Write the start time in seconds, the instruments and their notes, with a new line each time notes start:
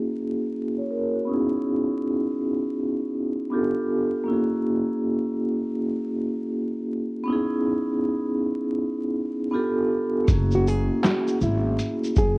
Already playing: vibraphone A#3 C#4 E4 F#4 G#4
0.78 vibraphone C#5
0.91 vibraphone A#4
1.15 vibraphone F#4
1.25 vibraphone B3 C#4
1.29 vibraphone D#4 E4
1.34 vibraphone G#4
3.50 vibraphone B3 D4 F4 G4
3.55 vibraphone A4
4.24 vibraphone A#3 C#4
4.28 vibraphone E4 F#4
4.33 vibraphone G#4
7.23 vibraphone B3 C#4
7.28 vibraphone D#4 E4
7.32 vibraphone G#4
9.51 vibraphone B3 D4 F4 G4
9.55 vibraphone A4
10.24 vibraphone A3 C#4, kick, closed hi-hat, shaker
10.29 upright bass F#1, vibraphone A#3 E4 F#4
10.33 vibraphone G#4
10.51 nylon-string guitar F#4, shaker
10.67 nylon-string guitar G#4, shaker
11.04 nylon-string guitar F#4, snare, clap, closed hi-hat, shaker
11.28 shaker
11.41 upright bass G#1, nylon-string guitar E4, shaker
11.79 closed hi-hat, shaker
12.04 shaker
12.16 upright bass F#1, nylon-string guitar G#4, kick, shaker